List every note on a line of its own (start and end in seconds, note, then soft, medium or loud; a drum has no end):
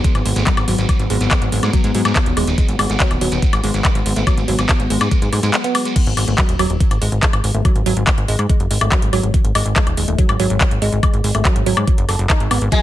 0.00 5.97 F#3 medium
0.00 5.98 B3 medium
0.00 shekere medium
0.04 0.14 G#3 medium
0.04 kick loud
0.04 closed hi-hat medium
0.15 0.22 G#1 medium
0.15 closed hi-hat medium
0.15 high woodblock soft
0.15 shekere soft
0.26 0.33 G#1 loud
0.26 0.32 G#3 medium
0.26 open hi-hat loud
0.36 0.44 G#1 loud
0.36 0.46 A3 medium
0.36 closed hi-hat medium
0.36 shekere medium
0.47 0.54 F#3 loud
0.47 kick loud
0.47 clap loud
0.47 closed hi-hat medium
0.57 0.65 G#1 medium
0.57 closed hi-hat medium
0.57 high woodblock medium
0.57 shekere soft
0.68 0.75 G#1 loud
0.68 0.78 F#3 loud
0.68 open hi-hat loud
0.78 0.86 G#1 medium
0.78 closed hi-hat medium
0.78 shekere medium
0.89 kick loud
0.89 closed hi-hat medium
0.89 high woodblock soft
0.89 shekere medium
0.99 1.07 G#1 medium
0.99 closed hi-hat soft
0.99 shekere soft
1.10 1.18 G#1 loud
1.10 1.20 G#3 loud
1.10 open hi-hat loud
1.21 1.28 G#1 medium
1.21 closed hi-hat medium
1.21 shekere medium
1.31 1.41 G#3 medium
1.31 kick loud
1.31 clap loud
1.31 closed hi-hat medium
1.31 high woodblock medium
1.31 shekere medium
1.42 1.49 G#1 medium
1.42 closed hi-hat medium
1.42 shekere soft
1.52 1.60 G#1 loud
1.52 1.59 G#3 medium
1.52 open hi-hat loud
1.63 1.70 G#2 medium
1.63 1.73 A3 medium
1.63 closed hi-hat medium
1.63 high woodblock soft
1.63 shekere medium
1.73 1.80 F#3 loud
1.73 kick loud
1.73 closed hi-hat medium
1.73 shekere medium
1.84 1.91 G#2 medium
1.84 closed hi-hat medium
1.84 shekere soft
1.95 2.02 G#2 loud
1.95 2.05 F#3 loud
1.95 open hi-hat loud
2.05 2.13 G#2 loud
2.05 closed hi-hat medium
2.05 high woodblock medium
2.05 shekere medium
2.16 kick loud
2.16 clap loud
2.16 closed hi-hat medium
2.26 2.34 D#1 medium
2.26 closed hi-hat medium
2.26 shekere soft
2.37 2.44 D#1 loud
2.37 2.47 G#3 loud
2.37 open hi-hat loud
2.37 high woodblock soft
2.47 2.55 D#1 medium
2.47 closed hi-hat medium
2.47 shekere medium
2.58 2.68 G#3 medium
2.58 kick loud
2.58 closed hi-hat medium
2.58 shekere medium
2.69 2.76 G#1 medium
2.69 closed hi-hat medium
2.69 shekere soft
2.79 2.87 G#1 loud
2.79 2.86 G#3 medium
2.79 open hi-hat medium
2.79 high woodblock medium
2.90 2.97 G#1 medium
2.90 3.00 A3 medium
2.90 closed hi-hat medium
2.90 shekere medium
3.00 3.07 F#3 loud
3.00 kick loud
3.00 clap loud
3.00 closed hi-hat medium
3.11 3.18 D#1 medium
3.11 closed hi-hat medium
3.11 high woodblock soft
3.11 shekere soft
3.21 3.29 D#1 medium
3.21 3.31 F#3 loud
3.21 open hi-hat loud
3.32 3.39 D#1 medium
3.32 closed hi-hat medium
3.32 shekere medium
3.42 kick loud
3.42 closed hi-hat medium
3.42 shekere medium
3.53 3.60 G#1 medium
3.53 closed hi-hat medium
3.53 high woodblock medium
3.53 shekere soft
3.64 3.71 G#1 loud
3.64 3.74 G#3 loud
3.64 open hi-hat loud
3.74 3.82 G#1 loud
3.74 closed hi-hat medium
3.74 shekere medium
3.85 3.95 G#3 medium
3.85 kick loud
3.85 clap loud
3.85 closed hi-hat medium
3.85 high woodblock soft
3.85 shekere medium
3.95 4.03 G#1 medium
3.95 closed hi-hat medium
3.95 shekere soft
4.06 4.13 G#1 loud
4.06 4.13 G#3 medium
4.06 open hi-hat loud
4.16 4.24 G#1 medium
4.16 4.26 A3 medium
4.16 closed hi-hat medium
4.16 shekere medium
4.26 4.34 F#3 loud
4.26 kick loud
4.26 closed hi-hat medium
4.26 high woodblock medium
4.26 shekere medium
4.38 4.45 G#1 medium
4.38 closed hi-hat medium
4.38 shekere soft
4.48 4.56 G#1 loud
4.48 4.58 F#3 loud
4.48 open hi-hat loud
4.59 4.66 G#1 medium
4.59 closed hi-hat medium
4.59 high woodblock soft
4.59 shekere medium
4.69 kick loud
4.69 clap loud
4.69 closed hi-hat medium
4.69 shekere medium
4.80 4.87 G#1 medium
4.80 closed hi-hat medium
4.80 shekere soft
4.90 4.98 G#1 loud
4.90 5.00 G#3 loud
4.90 open hi-hat loud
5.00 5.08 G#2 medium
5.00 closed hi-hat medium
5.00 high woodblock medium
5.00 shekere medium
5.11 5.21 G#3 medium
5.11 kick loud
5.11 closed hi-hat medium
5.11 shekere medium
5.22 5.29 G#2 medium
5.22 closed hi-hat medium
5.22 shekere soft
5.33 5.40 G#2 loud
5.33 5.39 A3 medium
5.33 open hi-hat loud
5.33 high woodblock soft
5.43 5.51 G#2 loud
5.43 5.53 G#3 medium
5.43 closed hi-hat medium
5.43 shekere medium
5.54 5.61 G#3 medium
5.54 clap loud
5.54 closed hi-hat medium
5.54 shekere medium
5.64 5.68 B3 loud
5.64 closed hi-hat medium
5.64 shekere soft
5.75 5.82 G#3 medium
5.75 open hi-hat loud
5.75 high woodblock medium
5.85 5.92 G#3 medium
5.85 closed hi-hat medium
5.85 shekere medium
5.96 6.06 G#3 medium
5.96 kick loud
5.96 closed hi-hat medium
5.96 crash loud
6.06 6.14 G#1 medium
6.06 closed hi-hat medium
6.17 6.25 G#1 loud
6.17 6.24 G#3 medium
6.17 open hi-hat loud
6.17 high woodblock soft
6.28 6.35 G#1 medium
6.28 6.38 A3 medium
6.28 closed hi-hat medium
6.38 6.45 F#3 loud
6.38 kick loud
6.38 clap loud
6.38 closed hi-hat medium
6.49 6.56 D#1 medium
6.49 closed hi-hat medium
6.59 6.67 D#1 loud
6.59 6.69 F#3 loud
6.59 open hi-hat medium
6.59 high woodblock medium
6.70 6.77 D#1 medium
6.70 closed hi-hat medium
6.80 kick loud
6.80 closed hi-hat medium
6.91 6.99 G#1 medium
6.91 closed hi-hat medium
6.91 high woodblock soft
7.02 7.09 G#1 loud
7.02 7.12 G#3 loud
7.02 open hi-hat loud
7.12 7.20 G#1 medium
7.12 closed hi-hat medium
7.23 7.33 G#3 medium
7.23 kick loud
7.23 clap loud
7.23 closed hi-hat medium
7.33 7.41 G#1 medium
7.33 closed hi-hat medium
7.33 high woodblock medium
7.44 7.51 G#1 loud
7.44 7.51 G#3 medium
7.44 open hi-hat medium
7.54 7.62 G#1 loud
7.54 7.64 A3 medium
7.54 closed hi-hat medium
7.65 7.72 F#3 loud
7.65 kick loud
7.65 closed hi-hat medium
7.65 high woodblock soft
7.76 7.83 G#1 medium
7.76 closed hi-hat medium
7.86 7.94 G#1 loud
7.86 7.96 F#3 loud
7.86 open hi-hat loud
7.97 8.04 G#1 loud
7.97 closed hi-hat medium
8.07 kick loud
8.07 clap loud
8.07 closed hi-hat medium
8.07 high woodblock medium
8.18 8.25 G#1 medium
8.18 closed hi-hat medium
8.28 8.36 G#1 loud
8.28 8.38 G#3 loud
8.28 open hi-hat loud
8.39 8.46 G#2 medium
8.39 closed hi-hat medium
8.39 high woodblock soft
8.49 8.60 G#3 medium
8.49 kick loud
8.49 closed hi-hat medium
8.60 8.68 F#1 medium
8.60 closed hi-hat medium
8.71 8.78 G#1 loud
8.71 8.77 G#3 medium
8.71 open hi-hat loud
8.81 8.89 G#1 loud
8.81 8.91 A3 medium
8.81 closed hi-hat medium
8.81 high woodblock medium
8.92 8.99 F#3 loud
8.92 kick loud
8.92 clap loud
8.92 closed hi-hat medium
9.02 9.10 G#1 medium
9.02 closed hi-hat medium
9.13 9.20 G#1 loud
9.13 9.23 F#3 loud
9.13 open hi-hat medium
9.13 high woodblock soft
9.23 9.31 G#1 medium
9.23 closed hi-hat medium
9.34 kick loud
9.34 closed hi-hat medium
9.45 9.52 G#1 medium
9.45 closed hi-hat medium
9.55 9.63 G#1 loud
9.55 9.65 G#3 loud
9.55 open hi-hat loud
9.55 high woodblock medium
9.66 9.73 G#1 medium
9.66 closed hi-hat medium
9.76 9.86 G#3 medium
9.76 kick loud
9.76 clap loud
9.76 closed hi-hat medium
9.87 9.94 D#1 medium
9.87 closed hi-hat medium
9.87 high woodblock soft
9.97 10.05 D#1 loud
9.97 10.04 G#3 medium
9.97 open hi-hat loud
10.08 10.15 D#1 medium
10.08 10.18 A3 medium
10.08 closed hi-hat medium
10.18 10.25 F#3 loud
10.18 kick loud
10.18 closed hi-hat medium
10.29 10.37 G#1 medium
10.29 closed hi-hat medium
10.29 high woodblock medium
10.40 10.47 G#1 loud
10.40 10.50 F#3 loud
10.40 open hi-hat loud
10.50 10.58 G#1 loud
10.50 closed hi-hat medium
10.61 kick loud
10.61 clap loud
10.61 closed hi-hat medium
10.61 high woodblock soft
10.71 10.79 G#1 medium
10.71 closed hi-hat medium
10.82 10.89 G#1 loud
10.82 10.92 G#3 loud
10.82 open hi-hat medium
10.92 11.00 G#1 medium
10.92 closed hi-hat medium
11.03 11.13 G#3 medium
11.03 kick loud
11.03 closed hi-hat medium
11.03 high woodblock medium
11.14 11.21 G#1 medium
11.14 closed hi-hat soft
11.24 11.32 G#1 loud
11.24 11.31 G#3 medium
11.24 open hi-hat loud
11.35 11.42 G#1 medium
11.35 11.45 A3 medium
11.35 closed hi-hat medium
11.35 high woodblock soft
11.45 11.52 F#3 loud
11.45 kick loud
11.45 clap loud
11.45 closed hi-hat medium
11.56 11.63 G#1 medium
11.56 closed hi-hat medium
11.66 11.74 G#1 loud
11.66 11.76 F#3 loud
11.66 open hi-hat medium
11.77 11.84 G#2 loud
11.77 closed hi-hat medium
11.77 high woodblock medium
11.88 kick loud
11.88 closed hi-hat medium
11.98 12.06 F#1 medium
11.98 closed hi-hat medium
12.09 12.16 F#1 loud
12.09 12.15 A4 medium
12.09 open hi-hat loud
12.09 high woodblock soft
12.19 12.27 F#1 loud
12.19 closed hi-hat medium
12.30 12.37 D#4 loud
12.30 kick loud
12.30 clap loud
12.30 closed hi-hat medium
12.40 12.48 G#1 medium
12.40 closed hi-hat medium
12.51 12.58 G#1 loud
12.51 12.55 B3 medium
12.51 open hi-hat medium
12.51 high woodblock medium
12.61 12.69 G#1 medium
12.61 closed hi-hat medium
12.72 12.79 F#3 loud
12.72 12.78 G#3 loud
12.72 kick loud
12.72 closed hi-hat medium
12.72 ride medium
12.72 shekere medium